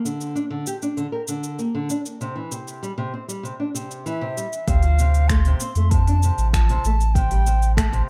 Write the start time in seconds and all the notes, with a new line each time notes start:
0.05 D3, cabasa
0.21 cabasa
0.35 D4, cabasa
0.50 D3
0.67 G4, cabasa
0.82 D4, cabasa
0.97 D3, cabasa
1.12 A#4
1.28 D3, cabasa
1.44 cabasa
1.59 A#3, cabasa
1.75 D3
1.90 D4, cabasa
2.06 cabasa
2.21 C3, cabasa
2.36 E3
2.51 C3, cabasa
2.68 cabasa
2.83 G3, cabasa
2.98 C3
3.13 C4
3.28 G3, cabasa
3.43 C3, cabasa
3.60 D4
3.74 C3, cabasa
3.91 cabasa
4.06 E3 E5, cabasa
4.21 C3
4.37 G3, cabasa
4.53 cabasa
4.67 D2 C3 F5, kick, open hi-hat, cabasa
4.83 F3, open hi-hat
4.99 C3, cabasa
5.14 open hi-hat, cabasa
5.28 A3 C6, finger snap, kick, open hi-hat, cabasa
5.45 C3, open hi-hat
5.60 C4, cabasa
5.75 F2 A3, open hi-hat, cabasa
5.90 C3 A5, kick, open hi-hat, cabasa
6.08 D4, open hi-hat
6.23 C3, cabasa
6.38 A1, cabasa
6.52 F3 A5, finger snap, kick, open hi-hat, cabasa
6.69 C3, open hi-hat
6.85 A1 A3, cabasa
7.00 open hi-hat, cabasa
7.14 C3 G5, kick, open hi-hat, cabasa
7.31 G3, open hi-hat
7.47 C3, cabasa
7.62 open hi-hat, cabasa
7.76 A3 A5, finger snap, kick, open hi-hat, cabasa
7.93 C3, open hi-hat